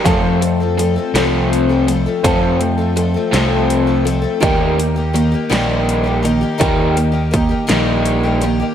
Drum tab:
HH |xxxxxx|xxxxxx|xxxxxx|xxxxxx|
SD |---o--|---o--|---o--|---o--|
BD |o-----|o-----|o-----|o-o---|